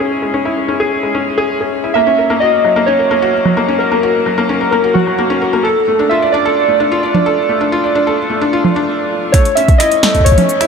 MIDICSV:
0, 0, Header, 1, 4, 480
1, 0, Start_track
1, 0, Tempo, 461538
1, 111, Time_signature, 4, 2, 24, 8
1, 11097, End_track
2, 0, Start_track
2, 0, Title_t, "Synth keys"
2, 0, Program_c, 0, 88
2, 2017, Note_on_c, 0, 76, 104
2, 2470, Note_off_c, 0, 76, 0
2, 2497, Note_on_c, 0, 75, 102
2, 2977, Note_on_c, 0, 73, 98
2, 2999, Note_off_c, 0, 75, 0
2, 3937, Note_on_c, 0, 70, 93
2, 3974, Note_off_c, 0, 73, 0
2, 4885, Note_off_c, 0, 70, 0
2, 4897, Note_on_c, 0, 70, 94
2, 5137, Note_on_c, 0, 66, 84
2, 5152, Note_off_c, 0, 70, 0
2, 5858, Note_on_c, 0, 69, 88
2, 5886, Note_off_c, 0, 66, 0
2, 6338, Note_on_c, 0, 76, 97
2, 6359, Note_off_c, 0, 69, 0
2, 6577, Note_on_c, 0, 74, 88
2, 6592, Note_off_c, 0, 76, 0
2, 9183, Note_off_c, 0, 74, 0
2, 9696, Note_on_c, 0, 73, 105
2, 9935, Note_on_c, 0, 76, 103
2, 9951, Note_off_c, 0, 73, 0
2, 10175, Note_on_c, 0, 75, 110
2, 10191, Note_off_c, 0, 76, 0
2, 10655, Note_on_c, 0, 73, 104
2, 10678, Note_off_c, 0, 75, 0
2, 11097, Note_off_c, 0, 73, 0
2, 11097, End_track
3, 0, Start_track
3, 0, Title_t, "Felt piano"
3, 0, Program_c, 1, 0
3, 0, Control_c, 1, 64, 127
3, 0, Note_on_c, 1, 56, 70
3, 0, Note_on_c, 1, 61, 94
3, 0, Note_on_c, 1, 64, 89
3, 0, Note_on_c, 1, 68, 97
3, 105, Note_off_c, 1, 68, 0
3, 231, Note_off_c, 1, 56, 0
3, 231, Note_on_c, 1, 56, 68
3, 296, Note_off_c, 1, 56, 0
3, 351, Note_off_c, 1, 61, 0
3, 351, Note_on_c, 1, 61, 92
3, 459, Note_off_c, 1, 61, 0
3, 471, Note_off_c, 1, 64, 0
3, 471, Note_on_c, 1, 64, 91
3, 579, Note_off_c, 1, 64, 0
3, 711, Note_on_c, 1, 61, 93
3, 825, Note_off_c, 1, 61, 0
3, 831, Note_on_c, 1, 68, 100
3, 945, Note_off_c, 1, 68, 0
3, 1072, Note_on_c, 1, 56, 78
3, 1136, Note_off_c, 1, 56, 0
3, 1191, Note_on_c, 1, 61, 93
3, 1299, Note_off_c, 1, 61, 0
3, 1431, Note_on_c, 1, 68, 98
3, 1539, Note_off_c, 1, 68, 0
3, 1671, Note_on_c, 1, 68, 75
3, 1779, Note_off_c, 1, 68, 0
3, 1911, Note_on_c, 1, 64, 72
3, 1976, Note_off_c, 1, 64, 0
3, 2031, Note_on_c, 1, 58, 92
3, 2046, Control_c, 1, 64, 0
3, 2139, Note_off_c, 1, 58, 0
3, 2151, Note_on_c, 1, 61, 91
3, 2205, Control_c, 1, 64, 127
3, 2259, Note_off_c, 1, 61, 0
3, 2272, Note_on_c, 1, 70, 72
3, 2379, Note_off_c, 1, 70, 0
3, 2392, Note_on_c, 1, 58, 96
3, 2506, Note_off_c, 1, 58, 0
3, 2512, Note_on_c, 1, 66, 88
3, 2626, Note_off_c, 1, 66, 0
3, 2752, Note_on_c, 1, 54, 74
3, 2816, Note_off_c, 1, 54, 0
3, 2872, Note_on_c, 1, 58, 97
3, 2979, Note_off_c, 1, 58, 0
3, 2991, Note_on_c, 1, 61, 95
3, 3099, Note_off_c, 1, 61, 0
3, 3112, Note_on_c, 1, 70, 71
3, 3219, Note_off_c, 1, 70, 0
3, 3232, Note_on_c, 1, 58, 90
3, 3346, Note_off_c, 1, 58, 0
3, 3352, Note_on_c, 1, 66, 97
3, 3466, Note_off_c, 1, 66, 0
3, 3592, Note_on_c, 1, 54, 74
3, 3656, Note_off_c, 1, 54, 0
3, 3712, Note_on_c, 1, 58, 97
3, 3819, Note_off_c, 1, 58, 0
3, 3832, Note_on_c, 1, 61, 93
3, 3939, Note_off_c, 1, 61, 0
3, 3952, Note_on_c, 1, 70, 79
3, 4059, Note_off_c, 1, 70, 0
3, 4072, Note_on_c, 1, 58, 94
3, 4186, Note_off_c, 1, 58, 0
3, 4193, Note_on_c, 1, 66, 95
3, 4306, Note_off_c, 1, 66, 0
3, 4432, Note_on_c, 1, 54, 75
3, 4497, Note_off_c, 1, 54, 0
3, 4552, Note_on_c, 1, 58, 96
3, 4660, Note_off_c, 1, 58, 0
3, 4672, Note_on_c, 1, 61, 98
3, 4779, Note_off_c, 1, 61, 0
3, 4792, Note_on_c, 1, 70, 76
3, 4899, Note_off_c, 1, 70, 0
3, 4912, Note_on_c, 1, 58, 93
3, 5026, Note_off_c, 1, 58, 0
3, 5032, Note_on_c, 1, 66, 94
3, 5146, Note_off_c, 1, 66, 0
3, 5273, Note_on_c, 1, 54, 74
3, 5337, Note_off_c, 1, 54, 0
3, 5392, Note_on_c, 1, 58, 94
3, 5499, Note_off_c, 1, 58, 0
3, 5512, Note_on_c, 1, 61, 98
3, 5619, Note_off_c, 1, 61, 0
3, 5632, Note_on_c, 1, 70, 71
3, 5739, Note_off_c, 1, 70, 0
3, 5752, Note_on_c, 1, 58, 91
3, 5866, Note_off_c, 1, 58, 0
3, 5873, Note_on_c, 1, 69, 95
3, 5885, Control_c, 1, 64, 0
3, 5986, Note_off_c, 1, 69, 0
3, 6045, Control_c, 1, 64, 127
3, 6113, Note_on_c, 1, 57, 69
3, 6177, Note_off_c, 1, 57, 0
3, 6232, Note_on_c, 1, 62, 96
3, 6339, Note_off_c, 1, 62, 0
3, 6352, Note_on_c, 1, 65, 92
3, 6459, Note_off_c, 1, 65, 0
3, 6473, Note_on_c, 1, 74, 74
3, 6580, Note_off_c, 1, 74, 0
3, 6593, Note_on_c, 1, 62, 100
3, 6706, Note_off_c, 1, 62, 0
3, 6712, Note_on_c, 1, 69, 99
3, 6826, Note_off_c, 1, 69, 0
3, 6952, Note_on_c, 1, 57, 74
3, 7016, Note_off_c, 1, 57, 0
3, 7072, Note_on_c, 1, 62, 91
3, 7179, Note_off_c, 1, 62, 0
3, 7192, Note_on_c, 1, 65, 98
3, 7299, Note_off_c, 1, 65, 0
3, 7311, Note_on_c, 1, 74, 76
3, 7419, Note_off_c, 1, 74, 0
3, 7431, Note_on_c, 1, 62, 98
3, 7545, Note_off_c, 1, 62, 0
3, 7551, Note_on_c, 1, 69, 93
3, 7666, Note_off_c, 1, 69, 0
3, 7792, Note_on_c, 1, 57, 76
3, 7856, Note_off_c, 1, 57, 0
3, 7912, Note_on_c, 1, 62, 95
3, 8019, Note_off_c, 1, 62, 0
3, 8032, Note_on_c, 1, 65, 96
3, 8139, Note_off_c, 1, 65, 0
3, 8152, Note_on_c, 1, 74, 74
3, 8259, Note_off_c, 1, 74, 0
3, 8272, Note_on_c, 1, 62, 93
3, 8386, Note_off_c, 1, 62, 0
3, 8392, Note_on_c, 1, 69, 95
3, 8506, Note_off_c, 1, 69, 0
3, 8631, Note_on_c, 1, 57, 78
3, 8696, Note_off_c, 1, 57, 0
3, 8751, Note_on_c, 1, 62, 96
3, 8859, Note_off_c, 1, 62, 0
3, 8871, Note_on_c, 1, 65, 96
3, 8975, Note_off_c, 1, 65, 0
3, 8991, Note_on_c, 1, 65, 70
3, 9056, Note_off_c, 1, 65, 0
3, 9111, Note_on_c, 1, 62, 102
3, 9219, Note_off_c, 1, 62, 0
3, 9711, Note_on_c, 1, 57, 79
3, 9725, Control_c, 1, 64, 0
3, 9825, Note_off_c, 1, 57, 0
3, 9910, Control_c, 1, 64, 127
3, 9951, Note_on_c, 1, 61, 73
3, 10016, Note_off_c, 1, 61, 0
3, 10191, Note_on_c, 1, 64, 100
3, 10299, Note_off_c, 1, 64, 0
3, 10431, Note_on_c, 1, 57, 78
3, 10536, Note_off_c, 1, 57, 0
3, 10552, Note_on_c, 1, 57, 76
3, 10666, Note_off_c, 1, 57, 0
3, 10791, Note_on_c, 1, 61, 75
3, 10856, Note_off_c, 1, 61, 0
3, 11031, Note_on_c, 1, 64, 104
3, 11097, Note_off_c, 1, 64, 0
3, 11097, End_track
4, 0, Start_track
4, 0, Title_t, "Drums"
4, 111, Note_on_c, 9, 42, 83
4, 215, Note_off_c, 9, 42, 0
4, 411, Note_on_c, 9, 42, 58
4, 515, Note_off_c, 9, 42, 0
4, 591, Note_on_c, 9, 42, 85
4, 695, Note_off_c, 9, 42, 0
4, 832, Note_on_c, 9, 42, 63
4, 936, Note_off_c, 9, 42, 0
4, 952, Note_on_c, 9, 42, 35
4, 1056, Note_off_c, 9, 42, 0
4, 1072, Note_on_c, 9, 42, 83
4, 1176, Note_off_c, 9, 42, 0
4, 1552, Note_on_c, 9, 42, 85
4, 1656, Note_off_c, 9, 42, 0
4, 1672, Note_on_c, 9, 42, 34
4, 1696, Note_off_c, 9, 42, 0
4, 1696, Note_on_c, 9, 42, 27
4, 1720, Note_off_c, 9, 42, 0
4, 1720, Note_on_c, 9, 42, 22
4, 1744, Note_off_c, 9, 42, 0
4, 1744, Note_on_c, 9, 42, 19
4, 1769, Note_off_c, 9, 42, 0
4, 1769, Note_on_c, 9, 42, 15
4, 1792, Note_off_c, 9, 42, 0
4, 1792, Note_on_c, 9, 42, 64
4, 1896, Note_off_c, 9, 42, 0
4, 2032, Note_on_c, 9, 42, 85
4, 2136, Note_off_c, 9, 42, 0
4, 2272, Note_on_c, 9, 42, 56
4, 2376, Note_off_c, 9, 42, 0
4, 2512, Note_on_c, 9, 42, 80
4, 2616, Note_off_c, 9, 42, 0
4, 2752, Note_on_c, 9, 42, 61
4, 2856, Note_off_c, 9, 42, 0
4, 3473, Note_on_c, 9, 42, 83
4, 3577, Note_off_c, 9, 42, 0
4, 3593, Note_on_c, 9, 64, 87
4, 3697, Note_off_c, 9, 64, 0
4, 3953, Note_on_c, 9, 42, 83
4, 4057, Note_off_c, 9, 42, 0
4, 4312, Note_on_c, 9, 42, 36
4, 4416, Note_off_c, 9, 42, 0
4, 4432, Note_on_c, 9, 42, 80
4, 4536, Note_off_c, 9, 42, 0
4, 4612, Note_on_c, 9, 42, 28
4, 4672, Note_off_c, 9, 42, 0
4, 4672, Note_on_c, 9, 42, 58
4, 4776, Note_off_c, 9, 42, 0
4, 5152, Note_on_c, 9, 64, 90
4, 5256, Note_off_c, 9, 64, 0
4, 5273, Note_on_c, 9, 42, 34
4, 5296, Note_off_c, 9, 42, 0
4, 5296, Note_on_c, 9, 42, 29
4, 5320, Note_off_c, 9, 42, 0
4, 5320, Note_on_c, 9, 42, 22
4, 5344, Note_off_c, 9, 42, 0
4, 5344, Note_on_c, 9, 42, 19
4, 5368, Note_off_c, 9, 42, 0
4, 5368, Note_on_c, 9, 42, 15
4, 5391, Note_off_c, 9, 42, 0
4, 5391, Note_on_c, 9, 42, 86
4, 5495, Note_off_c, 9, 42, 0
4, 5632, Note_on_c, 9, 42, 62
4, 5736, Note_off_c, 9, 42, 0
4, 5872, Note_on_c, 9, 42, 88
4, 5976, Note_off_c, 9, 42, 0
4, 5992, Note_on_c, 9, 42, 37
4, 6096, Note_off_c, 9, 42, 0
4, 6111, Note_on_c, 9, 42, 56
4, 6215, Note_off_c, 9, 42, 0
4, 6351, Note_on_c, 9, 42, 85
4, 6455, Note_off_c, 9, 42, 0
4, 6832, Note_on_c, 9, 42, 83
4, 6936, Note_off_c, 9, 42, 0
4, 6951, Note_on_c, 9, 42, 38
4, 7055, Note_off_c, 9, 42, 0
4, 7311, Note_on_c, 9, 42, 85
4, 7415, Note_off_c, 9, 42, 0
4, 7431, Note_on_c, 9, 42, 36
4, 7431, Note_on_c, 9, 64, 89
4, 7535, Note_off_c, 9, 42, 0
4, 7535, Note_off_c, 9, 64, 0
4, 7551, Note_on_c, 9, 42, 62
4, 7655, Note_off_c, 9, 42, 0
4, 7671, Note_on_c, 9, 42, 38
4, 7775, Note_off_c, 9, 42, 0
4, 7792, Note_on_c, 9, 42, 90
4, 7896, Note_off_c, 9, 42, 0
4, 7912, Note_on_c, 9, 42, 36
4, 7935, Note_off_c, 9, 42, 0
4, 7935, Note_on_c, 9, 42, 29
4, 7959, Note_off_c, 9, 42, 0
4, 7959, Note_on_c, 9, 42, 23
4, 7983, Note_off_c, 9, 42, 0
4, 7983, Note_on_c, 9, 42, 19
4, 8007, Note_off_c, 9, 42, 0
4, 8007, Note_on_c, 9, 42, 15
4, 8031, Note_off_c, 9, 42, 0
4, 8031, Note_on_c, 9, 42, 62
4, 8135, Note_off_c, 9, 42, 0
4, 8151, Note_on_c, 9, 42, 39
4, 8255, Note_off_c, 9, 42, 0
4, 8272, Note_on_c, 9, 42, 91
4, 8376, Note_off_c, 9, 42, 0
4, 8392, Note_on_c, 9, 42, 38
4, 8496, Note_off_c, 9, 42, 0
4, 8511, Note_on_c, 9, 42, 64
4, 8615, Note_off_c, 9, 42, 0
4, 8631, Note_on_c, 9, 42, 37
4, 8735, Note_off_c, 9, 42, 0
4, 8751, Note_on_c, 9, 42, 88
4, 8855, Note_off_c, 9, 42, 0
4, 8952, Note_on_c, 9, 42, 25
4, 8992, Note_off_c, 9, 42, 0
4, 8992, Note_on_c, 9, 42, 34
4, 8992, Note_on_c, 9, 64, 87
4, 9032, Note_off_c, 9, 42, 0
4, 9032, Note_on_c, 9, 42, 30
4, 9096, Note_off_c, 9, 64, 0
4, 9112, Note_off_c, 9, 42, 0
4, 9112, Note_on_c, 9, 42, 41
4, 9216, Note_off_c, 9, 42, 0
4, 9711, Note_on_c, 9, 36, 106
4, 9712, Note_on_c, 9, 26, 55
4, 9712, Note_on_c, 9, 42, 101
4, 9815, Note_off_c, 9, 36, 0
4, 9816, Note_off_c, 9, 26, 0
4, 9816, Note_off_c, 9, 42, 0
4, 9832, Note_on_c, 9, 42, 41
4, 9936, Note_off_c, 9, 42, 0
4, 9952, Note_on_c, 9, 42, 64
4, 10056, Note_off_c, 9, 42, 0
4, 10071, Note_on_c, 9, 36, 117
4, 10072, Note_on_c, 9, 42, 41
4, 10175, Note_off_c, 9, 36, 0
4, 10176, Note_off_c, 9, 42, 0
4, 10192, Note_on_c, 9, 26, 83
4, 10192, Note_on_c, 9, 42, 100
4, 10296, Note_off_c, 9, 26, 0
4, 10296, Note_off_c, 9, 42, 0
4, 10312, Note_on_c, 9, 42, 42
4, 10416, Note_off_c, 9, 42, 0
4, 10432, Note_on_c, 9, 38, 120
4, 10432, Note_on_c, 9, 42, 72
4, 10536, Note_off_c, 9, 38, 0
4, 10536, Note_off_c, 9, 42, 0
4, 10551, Note_on_c, 9, 36, 38
4, 10552, Note_on_c, 9, 42, 39
4, 10611, Note_off_c, 9, 36, 0
4, 10611, Note_on_c, 9, 36, 46
4, 10656, Note_off_c, 9, 42, 0
4, 10671, Note_off_c, 9, 36, 0
4, 10671, Note_on_c, 9, 36, 59
4, 10672, Note_on_c, 9, 42, 94
4, 10731, Note_off_c, 9, 36, 0
4, 10731, Note_on_c, 9, 36, 66
4, 10776, Note_off_c, 9, 42, 0
4, 10792, Note_on_c, 9, 42, 42
4, 10792, Note_on_c, 9, 64, 85
4, 10835, Note_off_c, 9, 36, 0
4, 10896, Note_off_c, 9, 42, 0
4, 10896, Note_off_c, 9, 64, 0
4, 10912, Note_on_c, 9, 69, 70
4, 11016, Note_off_c, 9, 69, 0
4, 11032, Note_on_c, 9, 26, 84
4, 11032, Note_on_c, 9, 42, 43
4, 11097, Note_off_c, 9, 26, 0
4, 11097, Note_off_c, 9, 42, 0
4, 11097, End_track
0, 0, End_of_file